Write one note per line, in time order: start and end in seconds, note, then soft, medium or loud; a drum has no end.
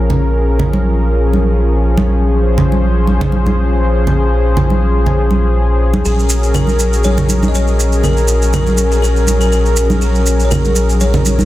0.00 6.03 A#1 medium
0.00 6.01 F3 medium
0.00 6.01 C#4 medium
0.00 11.45 G#4 medium
0.00 2.05 A#4 medium
0.10 low conga medium
0.59 low conga medium
0.73 high conga medium
1.33 high conga medium
1.97 high conga medium
2.07 6.00 C5 medium
2.58 low conga medium
2.72 high conga medium
3.07 high conga medium
3.21 low conga medium
3.32 high conga medium
3.46 high conga medium
4.07 low conga medium
4.57 low conga medium
4.70 high conga medium
5.06 low conga medium
5.31 high conga medium
5.94 high conga loud
6.05 11.45 A#1 medium
6.05 11.45 F#3 medium
6.05 11.45 C#4 medium
6.05 6.51 G#4 medium
6.05 11.45 A#4 medium
6.05 maracas soft
6.19 maracas soft
6.30 maracas medium
6.43 maracas soft
6.54 7.01 A#4 medium
6.54 low conga medium
6.54 maracas soft
6.67 high conga medium
6.67 maracas soft
6.79 maracas medium
6.93 maracas soft
7.04 7.49 C#5 loud
7.04 high conga medium
7.04 maracas soft
7.18 low conga medium
7.18 maracas soft
7.29 high conga medium
7.29 maracas medium
7.43 high conga medium
7.43 maracas soft
7.48 7.54 D#5 medium
7.55 8.06 C#5 medium
7.55 maracas soft
7.67 maracas soft
7.80 maracas medium
7.92 maracas soft
8.04 8.50 A#4 medium
8.04 low conga medium
8.04 maracas soft
8.17 maracas soft
8.28 maracas medium
8.42 maracas soft
8.53 8.93 A#4 medium
8.53 low conga medium
8.53 maracas soft
8.67 high conga medium
8.67 maracas soft
8.78 maracas medium
8.92 9.03 G#4 medium
8.92 maracas soft
9.02 9.38 A#4 medium
9.02 maracas soft
9.16 maracas soft
9.27 high conga medium
9.27 maracas medium
9.41 9.51 A#4 medium
9.41 maracas soft
9.52 10.04 A#4 medium
9.52 maracas soft
9.66 maracas soft
9.76 maracas medium
9.90 high conga medium
9.90 maracas soft
10.01 10.46 G#4 medium
10.01 maracas soft
10.15 maracas soft
10.26 maracas medium
10.40 maracas soft
10.45 10.51 C#5 medium
10.51 11.02 A#4 medium
10.51 low conga medium
10.51 maracas soft
10.65 high conga medium
10.65 maracas soft
10.76 maracas medium
10.89 maracas soft
11.00 11.45 C#5 medium
11.00 high conga medium
11.00 maracas soft
11.14 low conga medium
11.14 maracas soft
11.26 high conga medium
11.26 maracas medium
11.39 high conga medium
11.39 maracas soft